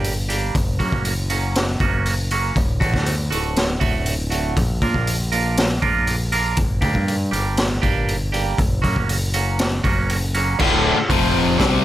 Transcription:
Already playing: fingered electric bass G1, clean electric guitar G3 A#3 D4 G4
0.04 open hi-hat
0.29 clean electric guitar G3 A#3 D4 G4, open hi-hat
0.55 fingered electric bass F#1, kick, open hi-hat
0.79 fingered electric bass F#2, clean electric guitar F#3 A#3 C#4 F#4, kick, open hi-hat
0.92 fingered electric bass F#1, kick
1.05 open hi-hat
1.30 clean electric guitar F#3 A#3 C#4 F#4, open hi-hat
1.55 snare, open hi-hat
1.80 fingered electric bass F#1, clean electric guitar F#3 A#3 C#4 F#4, kick, open hi-hat
2.06 open hi-hat
2.31 clean electric guitar F#3 A#3 C#4 F#4, open hi-hat
2.56 fingered electric bass D1, kick, open hi-hat
2.80 fingered electric bass A1, clean electric guitar A2 D3 A3 F#4, kick, open hi-hat
2.94 fingered electric bass D2, kick, snare
3.06 open hi-hat
3.31 fingered electric bass D1, clean electric guitar A2 D3 A3 F#4, open hi-hat
3.56 snare, open hi-hat
3.80 fingered electric bass D1, clean electric guitar A2 D3 A3 F#4, kick, open hi-hat
4.06 open hi-hat
4.30 clean electric guitar A2 D3 A3 F#4, open hi-hat
4.57 fingered electric bass A#1, kick, open hi-hat
4.82 fingered electric bass A#2, clean electric guitar A#3 D4 F4 A#4, kick, open hi-hat
4.94 fingered electric bass A#1, kick
5.07 open hi-hat
5.32 clean electric guitar A#3 D4 F4 A#4, open hi-hat
5.57 snare, open hi-hat
5.82 fingered electric bass A#1, clean electric guitar A#3 D4 F4 A#4, kick, open hi-hat
6.07 open hi-hat
6.32 clean electric guitar A#3 D4 F4 A#4, open hi-hat
6.57 fingered electric bass G1, kick, open hi-hat
6.81 fingered electric bass D2, clean electric guitar G3 A#3 D4 G4, kick, open hi-hat
6.95 fingered electric bass G2, kick
7.08 open hi-hat
7.31 fingered electric bass G1, clean electric guitar G3 A#3 D4 G4, open hi-hat
7.57 snare, open hi-hat
7.82 fingered electric bass G1, clean electric guitar G3 A#3 D4 G4, kick, open hi-hat
8.08 open hi-hat
8.32 clean electric guitar G3 A#3 D4 G4, open hi-hat
8.58 fingered electric bass F#1, kick, open hi-hat
8.82 fingered electric bass F#2, clean electric guitar F#3 A#3 C#4 F#4, kick, open hi-hat
8.96 fingered electric bass F#1, kick
9.09 open hi-hat
9.33 clean electric guitar F#3 A#3 C#4 F#4, open hi-hat
9.59 snare, open hi-hat
9.84 fingered electric bass F#1, clean electric guitar F#3 A#3 C#4 F#4, kick, open hi-hat
10.09 open hi-hat
10.34 clean electric guitar F#3 A#3 C#4 F#4, open hi-hat
10.59 fingered electric bass D1, overdriven electric guitar D2 A2 D3, string section D3 A3 F#4, kick, crash
10.97 muted fingered electric bass stroke, muted distorted electric guitar stroke, muted overdriven electric guitar stroke
11.09 fingered electric bass F1, overdriven electric guitar F2 C3 F3, string section F3 C4 C5, kick, open hi-hat
11.59 fingered electric bass C2, overdriven electric guitar C3 G3 C4, string section D3 A3 F#4, kick, snare, open hi-hat

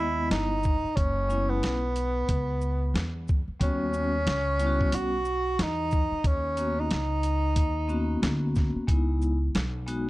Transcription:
Already playing: upright bass D#2, vibraphone G#3 B3, tenor saxophone E4
0.00 vibraphone E4 D#5
0.31 upright bass G1, tenor saxophone D#4, snare, closed hi-hat
0.63 kick, shaker
0.84 muted upright bass stroke
0.96 upright bass F#1, tenor saxophone C#4, kick, closed hi-hat
1.29 vibraphone G#3 B3 C#4 E4, shaker
1.49 tenor saxophone B3
1.63 upright bass B1, snare, closed hi-hat
1.96 closed hi-hat, shaker
2.29 upright bass C#2, kick, closed hi-hat
2.61 shaker
2.94 upright bass E2, snare, closed hi-hat
3.28 kick, shaker
3.48 muted upright bass stroke
3.60 upright bass D#2, vibraphone G3 B3 C#4 F#4, tenor saxophone C#4, kick, closed hi-hat
3.93 shaker
4.27 upright bass C#2, snare, closed hi-hat
4.58 vibraphone G3 B3 C#4 E4, closed hi-hat, shaker
4.66 vibraphone F#4
4.81 kick
4.92 upright bass B1, tenor saxophone F#4, closed hi-hat
5.25 shaker
5.59 upright bass E2, tenor saxophone D#4, snare, closed hi-hat
5.91 kick, shaker
6.12 muted upright bass stroke
6.24 upright bass D#2, tenor saxophone C#4, kick, closed hi-hat
6.57 vibraphone A#3 B3 C#4 F#4, closed hi-hat, shaker
6.80 tenor saxophone D#4
6.91 upright bass C#2, snare, closed hi-hat
7.23 closed hi-hat, shaker
7.56 upright bass D#2, kick, closed hi-hat
7.88 vibraphone A#3 B3 C#4 F#4, shaker
8.22 upright bass D2, snare, closed hi-hat
8.55 kick, snare, shaker
8.75 muted upright bass stroke
8.87 upright bass C#2, vibraphone G#3 B3 D#4 E4, kick, closed hi-hat
9.22 shaker
9.55 upright bass B1, snare, closed hi-hat
9.86 vibraphone G#3 B3 D#4 F#4, closed hi-hat, shaker

